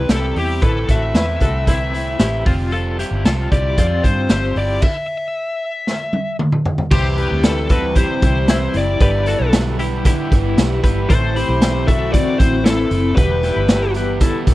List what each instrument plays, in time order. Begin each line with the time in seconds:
Already playing: lead electric guitar B4
0.09 fingered electric bass C2, overdriven electric guitar C3 E3 G3 C4 E4, clean electric guitar E4 G4, lead electric guitar A4, snare, closed hi-hat
0.36 fingered electric bass E2, overdriven electric guitar G3 C4 E4, clean electric guitar E4 G4, lead electric guitar G4, open hi-hat
0.61 fingered electric bass A1, overdriven electric guitar A2 E3 A3 C4 E4, clean electric guitar E4 B4, lead electric guitar A4, kick, closed hi-hat
0.88 fingered electric bass A1, overdriven electric guitar A3 C4 E4, clean electric guitar F#4 A4, lead electric guitar E5, kick, snare, closed hi-hat
1.14 fingered electric bass E2, overdriven electric guitar A2 E3 A3 C4 E4, clean electric guitar E4 B4, snare, closed hi-hat
1.40 fingered electric bass C2, overdriven electric guitar A3 C4 E4, clean electric guitar F#4 A4, kick, closed hi-hat
1.67 overdriven electric guitar E3 A3 C4 E4, clean electric guitar C4 E4, kick, closed hi-hat
1.93 overdriven electric guitar A3 C4 E4, closed hi-hat
2.19 fingered electric bass A1, overdriven electric guitar A2 E3 A3 C4 E4, clean electric guitar E4 G4, snare, closed hi-hat
2.46 fingered electric bass F1, overdriven electric guitar G3 C4 F4, clean electric guitar C4 F4, kick, open hi-hat
2.72 overdriven electric guitar F3 G3 C4 F4, clean electric guitar F4 A4, closed hi-hat
2.99 overdriven electric guitar G3 C4 F4, clean electric guitar E4 G4, closed hi-hat
3.11 fingered electric bass G1
3.24 fingered electric bass C2, overdriven electric guitar F3 G3 C4 F4, clean electric guitar F4 A4, snare, closed hi-hat
3.51 fingered electric bass C2, overdriven electric guitar G3 C4 F4, clean electric guitar E4 G4, lead electric guitar D5, kick, closed hi-hat
3.77 fingered electric bass F2, overdriven electric guitar F3 G3 C4 F4, clean electric guitar C4 F4, kick, closed hi-hat
4.03 fingered electric bass G2, overdriven electric guitar G3 C4 F4, lead electric guitar C5, kick, closed hi-hat
4.29 fingered electric bass G1, overdriven electric guitar F3 G3 C4 F4, clean electric guitar C4 G4, snare, closed hi-hat
4.56 fingered electric bass G1, overdriven electric guitar G3 C4 F4, clean electric guitar E4 G4, lead electric guitar D5, open hi-hat
4.82 lead electric guitar E5, kick, crash
5.87 snare
6.13 high tom
6.39 mid tom
6.52 mid tom
6.66 floor tom
6.78 floor tom
6.91 fingered electric bass C2, overdriven electric guitar C3 E3 G3 C4 E4, string machine E3 G3 C4 G4, lead electric guitar G4, clean electric guitar G4 C5, kick, crash
7.16 overdriven electric guitar G3 C4 E4, clean electric guitar G4 B4, closed hi-hat
7.31 fingered electric bass D2
7.43 overdriven electric guitar E3 G3 C4 E4, lead electric guitar A4, snare, closed hi-hat
7.69 overdriven electric guitar G3 C4 E4, clean electric guitar F#4 A4, lead electric guitar B4, kick, closed hi-hat
7.95 overdriven electric guitar C3 E3 G3 C4 E4, clean electric guitar E4 G4, lead electric guitar C5, kick, closed hi-hat
8.22 fingered electric bass C2, overdriven electric guitar G3 C4 E4, kick, closed hi-hat
8.48 overdriven electric guitar E3 G3 C4 E4, clean electric guitar C4 E4, snare, closed hi-hat
8.74 fingered electric bass F#1, overdriven electric guitar G3 C4 E4, lead electric guitar D5, closed hi-hat
9.00 fingered electric bass G1, overdriven electric guitar G2 D3 E3 G3 B3 E4, string machine D3 G3 B3 E4, clean electric guitar G4 B4, kick, closed hi-hat
9.26 overdriven electric guitar E3 G3 B3 E4, clean electric guitar F#4 A4, closed hi-hat
9.40 fingered electric bass B1
9.52 overdriven electric guitar E3 G3 B3 E4, snare, closed hi-hat
9.78 overdriven electric guitar E3 G3 B3 E4, clean electric guitar E4 G4, closed hi-hat
10.05 overdriven electric guitar G2 D3 E3 G3 B3 E4, clean electric guitar E4 G4, kick, closed hi-hat
10.32 fingered electric bass G1, overdriven electric guitar E3 G3 B3 E4, kick, closed hi-hat
10.57 fingered electric bass B1, overdriven electric guitar E3 G3 B3 E4, snare, closed hi-hat
10.83 fingered electric bass G1, overdriven electric guitar E3 G3 B3 E4, clean electric guitar G4 B4, kick, closed hi-hat
11.09 fingered electric bass A1, overdriven electric guitar A2 E3 A3 C4 E4, string machine E3 A3 C4, clean electric guitar A4 C5, lead electric guitar C5, kick, closed hi-hat
11.36 overdriven electric guitar A3 C4 E4, clean electric guitar G4 B5, closed hi-hat
11.49 fingered electric bass B1
11.61 overdriven electric guitar E3 A3 C4 E4, snare, closed hi-hat
11.87 overdriven electric guitar A3 C4 E4, clean electric guitar F#4 A4, lead electric guitar E5, kick, closed hi-hat
12.13 overdriven electric guitar A2 E3 A3 C4 E4, clean electric guitar C4 F#4, lead electric guitar D5, kick, closed hi-hat
12.38 fingered electric bass A1, overdriven electric guitar A3 C4 E4, lead electric guitar C5, kick, closed hi-hat
12.65 overdriven electric guitar E3 A3 C4 E4, clean electric guitar C4 E4, lead electric guitar A4, snare, closed hi-hat
12.91 fingered electric bass F#1, overdriven electric guitar A3 C4 E4, closed hi-hat
13.16 fingered electric bass E1, overdriven electric guitar E2 B2 E3 G3 B3 E4, string machine E3 G3 B3 G4, clean electric guitar G4 B4, lead electric guitar B4, kick, closed hi-hat
13.43 overdriven electric guitar E3 G3 B3 E4, clean electric guitar E4 G4, snare, closed hi-hat
13.56 fingered electric bass G1
13.68 overdriven electric guitar E3 G3 B3 E4, snare, closed hi-hat
13.94 overdriven electric guitar E3 G3 B3 E4, clean electric guitar G4 B4, closed hi-hat
14.20 overdriven electric guitar E2 B2 E3 G3 B3 E4, clean electric guitar E4 A4, kick, closed hi-hat
14.47 fingered electric bass E1, overdriven electric guitar E3 G3 B3 E4, kick, closed hi-hat